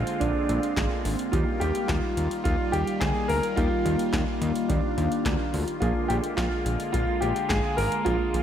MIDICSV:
0, 0, Header, 1, 6, 480
1, 0, Start_track
1, 0, Key_signature, -3, "major"
1, 0, Tempo, 560748
1, 1140, Time_signature, 4, 2, 24, 8
1, 7214, End_track
2, 0, Start_track
2, 0, Title_t, "Grand piano"
2, 0, Program_c, 0, 0
2, 0, Note_on_c, 0, 65, 111
2, 168, Note_on_c, 0, 62, 88
2, 203, Note_off_c, 0, 65, 0
2, 860, Note_off_c, 0, 62, 0
2, 1128, Note_on_c, 0, 65, 97
2, 1357, Note_off_c, 0, 65, 0
2, 1368, Note_on_c, 0, 67, 93
2, 1607, Note_on_c, 0, 65, 94
2, 1622, Note_off_c, 0, 67, 0
2, 2060, Note_off_c, 0, 65, 0
2, 2088, Note_on_c, 0, 65, 105
2, 2317, Note_off_c, 0, 65, 0
2, 2328, Note_on_c, 0, 67, 102
2, 2568, Note_on_c, 0, 68, 105
2, 2582, Note_off_c, 0, 67, 0
2, 2809, Note_on_c, 0, 70, 107
2, 2822, Note_off_c, 0, 68, 0
2, 3049, Note_on_c, 0, 65, 106
2, 3062, Note_off_c, 0, 70, 0
2, 4010, Note_on_c, 0, 62, 82
2, 4043, Note_off_c, 0, 65, 0
2, 4701, Note_off_c, 0, 62, 0
2, 4967, Note_on_c, 0, 65, 95
2, 5207, Note_on_c, 0, 67, 90
2, 5221, Note_off_c, 0, 65, 0
2, 5263, Note_off_c, 0, 67, 0
2, 5448, Note_on_c, 0, 65, 94
2, 5915, Note_off_c, 0, 65, 0
2, 5928, Note_on_c, 0, 65, 106
2, 6168, Note_on_c, 0, 67, 101
2, 6181, Note_off_c, 0, 65, 0
2, 6409, Note_on_c, 0, 68, 107
2, 6421, Note_off_c, 0, 67, 0
2, 6649, Note_on_c, 0, 70, 107
2, 6662, Note_off_c, 0, 68, 0
2, 6887, Note_on_c, 0, 65, 109
2, 6902, Note_off_c, 0, 70, 0
2, 7214, Note_off_c, 0, 65, 0
2, 7214, End_track
3, 0, Start_track
3, 0, Title_t, "Synth keys"
3, 0, Program_c, 1, 88
3, 0, Note_on_c, 1, 58, 67
3, 0, Note_on_c, 1, 62, 63
3, 0, Note_on_c, 1, 65, 63
3, 0, Note_on_c, 1, 68, 76
3, 631, Note_off_c, 1, 65, 0
3, 632, Note_off_c, 1, 58, 0
3, 632, Note_off_c, 1, 62, 0
3, 632, Note_off_c, 1, 68, 0
3, 661, Note_on_c, 1, 58, 55
3, 661, Note_on_c, 1, 62, 50
3, 661, Note_on_c, 1, 65, 50
3, 661, Note_on_c, 1, 68, 59
3, 1131, Note_off_c, 1, 58, 0
3, 1131, Note_off_c, 1, 65, 0
3, 1141, Note_off_c, 1, 62, 0
3, 1141, Note_off_c, 1, 68, 0
3, 1141, Note_on_c, 1, 58, 72
3, 1141, Note_on_c, 1, 67, 76
3, 1142, Note_on_c, 1, 63, 65
3, 1142, Note_on_c, 1, 65, 62
3, 3027, Note_off_c, 1, 58, 0
3, 3027, Note_off_c, 1, 63, 0
3, 3027, Note_off_c, 1, 65, 0
3, 3027, Note_off_c, 1, 67, 0
3, 3061, Note_on_c, 1, 58, 69
3, 3061, Note_on_c, 1, 63, 63
3, 3061, Note_on_c, 1, 65, 62
3, 3061, Note_on_c, 1, 67, 76
3, 4237, Note_off_c, 1, 58, 0
3, 4237, Note_off_c, 1, 63, 0
3, 4237, Note_off_c, 1, 65, 0
3, 4237, Note_off_c, 1, 67, 0
3, 4261, Note_on_c, 1, 51, 47
3, 4261, Note_on_c, 1, 58, 52
3, 4261, Note_on_c, 1, 65, 48
3, 4261, Note_on_c, 1, 67, 60
3, 4971, Note_off_c, 1, 58, 0
3, 4971, Note_off_c, 1, 65, 0
3, 4981, Note_off_c, 1, 51, 0
3, 4981, Note_off_c, 1, 67, 0
3, 4981, Note_on_c, 1, 58, 70
3, 4981, Note_on_c, 1, 62, 63
3, 4981, Note_on_c, 1, 65, 65
3, 4981, Note_on_c, 1, 68, 76
3, 6866, Note_off_c, 1, 58, 0
3, 6866, Note_off_c, 1, 62, 0
3, 6866, Note_off_c, 1, 65, 0
3, 6866, Note_off_c, 1, 68, 0
3, 6900, Note_on_c, 1, 58, 70
3, 6900, Note_on_c, 1, 65, 62
3, 6901, Note_on_c, 1, 62, 62
3, 6901, Note_on_c, 1, 68, 76
3, 7214, Note_off_c, 1, 58, 0
3, 7214, Note_off_c, 1, 62, 0
3, 7214, Note_off_c, 1, 65, 0
3, 7214, Note_off_c, 1, 68, 0
3, 7214, End_track
4, 0, Start_track
4, 0, Title_t, "Analog synth pad"
4, 0, Program_c, 2, 89
4, 0, Note_on_c, 2, 50, 79
4, 0, Note_on_c, 2, 56, 72
4, 0, Note_on_c, 2, 60, 75
4, 0, Note_on_c, 2, 65, 86
4, 1106, Note_off_c, 2, 50, 0
4, 1106, Note_off_c, 2, 56, 0
4, 1106, Note_off_c, 2, 65, 0
4, 1122, Note_off_c, 2, 60, 0
4, 1141, Note_on_c, 2, 51, 82
4, 1141, Note_on_c, 2, 55, 74
4, 1141, Note_on_c, 2, 58, 76
4, 1141, Note_on_c, 2, 65, 86
4, 4946, Note_off_c, 2, 51, 0
4, 4947, Note_off_c, 2, 55, 0
4, 4981, Note_on_c, 2, 50, 81
4, 4981, Note_on_c, 2, 56, 73
4, 7214, Note_off_c, 2, 50, 0
4, 7214, Note_off_c, 2, 56, 0
4, 7214, Note_off_c, 2, 58, 0
4, 7214, Note_off_c, 2, 65, 0
4, 7214, End_track
5, 0, Start_track
5, 0, Title_t, "Analog synth bass"
5, 0, Program_c, 3, 38
5, 182, Note_on_c, 3, 34, 102
5, 275, Note_off_c, 3, 34, 0
5, 421, Note_on_c, 3, 34, 100
5, 514, Note_off_c, 3, 34, 0
5, 660, Note_on_c, 3, 32, 97
5, 754, Note_off_c, 3, 32, 0
5, 901, Note_on_c, 3, 32, 101
5, 994, Note_off_c, 3, 32, 0
5, 1141, Note_on_c, 3, 39, 113
5, 1234, Note_off_c, 3, 39, 0
5, 1380, Note_on_c, 3, 39, 108
5, 1474, Note_off_c, 3, 39, 0
5, 1619, Note_on_c, 3, 39, 110
5, 1713, Note_off_c, 3, 39, 0
5, 1860, Note_on_c, 3, 39, 106
5, 1954, Note_off_c, 3, 39, 0
5, 2101, Note_on_c, 3, 39, 109
5, 2195, Note_off_c, 3, 39, 0
5, 2340, Note_on_c, 3, 39, 108
5, 2434, Note_off_c, 3, 39, 0
5, 2580, Note_on_c, 3, 38, 107
5, 2674, Note_off_c, 3, 38, 0
5, 2820, Note_on_c, 3, 38, 98
5, 2914, Note_off_c, 3, 38, 0
5, 3061, Note_on_c, 3, 39, 99
5, 3154, Note_off_c, 3, 39, 0
5, 3300, Note_on_c, 3, 39, 106
5, 3394, Note_off_c, 3, 39, 0
5, 3539, Note_on_c, 3, 39, 108
5, 3633, Note_off_c, 3, 39, 0
5, 3780, Note_on_c, 3, 39, 112
5, 3874, Note_off_c, 3, 39, 0
5, 4021, Note_on_c, 3, 39, 104
5, 4115, Note_off_c, 3, 39, 0
5, 4260, Note_on_c, 3, 39, 107
5, 4354, Note_off_c, 3, 39, 0
5, 4500, Note_on_c, 3, 38, 98
5, 4594, Note_off_c, 3, 38, 0
5, 4741, Note_on_c, 3, 38, 92
5, 4834, Note_off_c, 3, 38, 0
5, 4981, Note_on_c, 3, 34, 105
5, 5074, Note_off_c, 3, 34, 0
5, 5220, Note_on_c, 3, 34, 109
5, 5314, Note_off_c, 3, 34, 0
5, 5459, Note_on_c, 3, 34, 99
5, 5553, Note_off_c, 3, 34, 0
5, 5700, Note_on_c, 3, 34, 106
5, 5794, Note_off_c, 3, 34, 0
5, 5942, Note_on_c, 3, 34, 103
5, 6035, Note_off_c, 3, 34, 0
5, 6180, Note_on_c, 3, 34, 108
5, 6274, Note_off_c, 3, 34, 0
5, 6419, Note_on_c, 3, 32, 100
5, 6513, Note_off_c, 3, 32, 0
5, 6659, Note_on_c, 3, 32, 91
5, 6753, Note_off_c, 3, 32, 0
5, 6900, Note_on_c, 3, 34, 104
5, 6994, Note_off_c, 3, 34, 0
5, 7140, Note_on_c, 3, 34, 108
5, 7214, Note_off_c, 3, 34, 0
5, 7214, End_track
6, 0, Start_track
6, 0, Title_t, "Drums"
6, 60, Note_on_c, 9, 42, 63
6, 146, Note_off_c, 9, 42, 0
6, 181, Note_on_c, 9, 42, 80
6, 182, Note_on_c, 9, 36, 117
6, 266, Note_off_c, 9, 42, 0
6, 267, Note_off_c, 9, 36, 0
6, 421, Note_on_c, 9, 42, 68
6, 507, Note_off_c, 9, 42, 0
6, 541, Note_on_c, 9, 42, 51
6, 627, Note_off_c, 9, 42, 0
6, 660, Note_on_c, 9, 36, 114
6, 660, Note_on_c, 9, 42, 80
6, 661, Note_on_c, 9, 38, 121
6, 661, Note_on_c, 9, 39, 97
6, 746, Note_off_c, 9, 36, 0
6, 746, Note_off_c, 9, 42, 0
6, 747, Note_off_c, 9, 38, 0
6, 747, Note_off_c, 9, 39, 0
6, 900, Note_on_c, 9, 46, 80
6, 986, Note_off_c, 9, 46, 0
6, 1019, Note_on_c, 9, 42, 59
6, 1105, Note_off_c, 9, 42, 0
6, 1140, Note_on_c, 9, 42, 72
6, 1141, Note_on_c, 9, 36, 123
6, 1226, Note_off_c, 9, 36, 0
6, 1226, Note_off_c, 9, 42, 0
6, 1381, Note_on_c, 9, 42, 68
6, 1466, Note_off_c, 9, 42, 0
6, 1498, Note_on_c, 9, 42, 61
6, 1583, Note_off_c, 9, 42, 0
6, 1619, Note_on_c, 9, 36, 119
6, 1619, Note_on_c, 9, 38, 104
6, 1619, Note_on_c, 9, 39, 87
6, 1619, Note_on_c, 9, 42, 74
6, 1705, Note_off_c, 9, 36, 0
6, 1705, Note_off_c, 9, 38, 0
6, 1705, Note_off_c, 9, 39, 0
6, 1705, Note_off_c, 9, 42, 0
6, 1860, Note_on_c, 9, 42, 89
6, 1946, Note_off_c, 9, 42, 0
6, 1979, Note_on_c, 9, 42, 61
6, 2065, Note_off_c, 9, 42, 0
6, 2100, Note_on_c, 9, 42, 80
6, 2102, Note_on_c, 9, 36, 115
6, 2186, Note_off_c, 9, 42, 0
6, 2187, Note_off_c, 9, 36, 0
6, 2341, Note_on_c, 9, 42, 70
6, 2426, Note_off_c, 9, 42, 0
6, 2461, Note_on_c, 9, 42, 53
6, 2546, Note_off_c, 9, 42, 0
6, 2580, Note_on_c, 9, 36, 119
6, 2580, Note_on_c, 9, 42, 83
6, 2581, Note_on_c, 9, 38, 116
6, 2581, Note_on_c, 9, 39, 99
6, 2665, Note_off_c, 9, 36, 0
6, 2666, Note_off_c, 9, 42, 0
6, 2667, Note_off_c, 9, 38, 0
6, 2667, Note_off_c, 9, 39, 0
6, 2820, Note_on_c, 9, 46, 79
6, 2906, Note_off_c, 9, 46, 0
6, 2939, Note_on_c, 9, 42, 60
6, 3025, Note_off_c, 9, 42, 0
6, 3060, Note_on_c, 9, 42, 73
6, 3061, Note_on_c, 9, 36, 122
6, 3145, Note_off_c, 9, 42, 0
6, 3146, Note_off_c, 9, 36, 0
6, 3301, Note_on_c, 9, 42, 70
6, 3387, Note_off_c, 9, 42, 0
6, 3418, Note_on_c, 9, 42, 61
6, 3504, Note_off_c, 9, 42, 0
6, 3539, Note_on_c, 9, 36, 118
6, 3539, Note_on_c, 9, 38, 105
6, 3539, Note_on_c, 9, 39, 87
6, 3539, Note_on_c, 9, 42, 78
6, 3625, Note_off_c, 9, 36, 0
6, 3625, Note_off_c, 9, 38, 0
6, 3625, Note_off_c, 9, 39, 0
6, 3625, Note_off_c, 9, 42, 0
6, 3781, Note_on_c, 9, 42, 85
6, 3866, Note_off_c, 9, 42, 0
6, 3899, Note_on_c, 9, 42, 62
6, 3985, Note_off_c, 9, 42, 0
6, 4020, Note_on_c, 9, 42, 79
6, 4022, Note_on_c, 9, 36, 122
6, 4106, Note_off_c, 9, 42, 0
6, 4107, Note_off_c, 9, 36, 0
6, 4261, Note_on_c, 9, 42, 69
6, 4347, Note_off_c, 9, 42, 0
6, 4380, Note_on_c, 9, 42, 52
6, 4466, Note_off_c, 9, 42, 0
6, 4500, Note_on_c, 9, 36, 122
6, 4501, Note_on_c, 9, 38, 122
6, 4501, Note_on_c, 9, 39, 94
6, 4501, Note_on_c, 9, 42, 78
6, 4586, Note_off_c, 9, 36, 0
6, 4586, Note_off_c, 9, 42, 0
6, 4587, Note_off_c, 9, 38, 0
6, 4587, Note_off_c, 9, 39, 0
6, 4740, Note_on_c, 9, 46, 76
6, 4826, Note_off_c, 9, 46, 0
6, 4859, Note_on_c, 9, 42, 58
6, 4945, Note_off_c, 9, 42, 0
6, 4980, Note_on_c, 9, 42, 70
6, 4981, Note_on_c, 9, 36, 122
6, 5066, Note_off_c, 9, 36, 0
6, 5066, Note_off_c, 9, 42, 0
6, 5221, Note_on_c, 9, 42, 68
6, 5307, Note_off_c, 9, 42, 0
6, 5338, Note_on_c, 9, 42, 63
6, 5424, Note_off_c, 9, 42, 0
6, 5459, Note_on_c, 9, 36, 116
6, 5459, Note_on_c, 9, 38, 103
6, 5459, Note_on_c, 9, 39, 85
6, 5460, Note_on_c, 9, 42, 77
6, 5545, Note_off_c, 9, 36, 0
6, 5545, Note_off_c, 9, 38, 0
6, 5545, Note_off_c, 9, 39, 0
6, 5545, Note_off_c, 9, 42, 0
6, 5701, Note_on_c, 9, 42, 87
6, 5786, Note_off_c, 9, 42, 0
6, 5819, Note_on_c, 9, 42, 62
6, 5905, Note_off_c, 9, 42, 0
6, 5940, Note_on_c, 9, 42, 84
6, 5941, Note_on_c, 9, 36, 120
6, 6025, Note_off_c, 9, 42, 0
6, 6027, Note_off_c, 9, 36, 0
6, 6181, Note_on_c, 9, 42, 70
6, 6266, Note_off_c, 9, 42, 0
6, 6301, Note_on_c, 9, 42, 54
6, 6386, Note_off_c, 9, 42, 0
6, 6420, Note_on_c, 9, 36, 115
6, 6420, Note_on_c, 9, 42, 78
6, 6421, Note_on_c, 9, 38, 123
6, 6421, Note_on_c, 9, 39, 98
6, 6505, Note_off_c, 9, 36, 0
6, 6506, Note_off_c, 9, 38, 0
6, 6506, Note_off_c, 9, 39, 0
6, 6506, Note_off_c, 9, 42, 0
6, 6660, Note_on_c, 9, 46, 79
6, 6746, Note_off_c, 9, 46, 0
6, 6779, Note_on_c, 9, 42, 60
6, 6865, Note_off_c, 9, 42, 0
6, 6900, Note_on_c, 9, 36, 123
6, 6900, Note_on_c, 9, 42, 73
6, 6985, Note_off_c, 9, 42, 0
6, 6986, Note_off_c, 9, 36, 0
6, 7141, Note_on_c, 9, 42, 69
6, 7214, Note_off_c, 9, 42, 0
6, 7214, End_track
0, 0, End_of_file